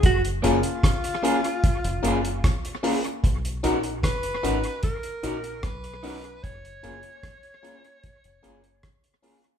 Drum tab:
HH |xxxxxxxxxxxxxxox|xxxxxxxxxxxxxxox|xxxxxxxxxxxxxxox|
SD |----r-------r---|----r-------r---|----r-------r---|
BD |o---o---o---o---|o---o---o---o---|o---o---o---o---|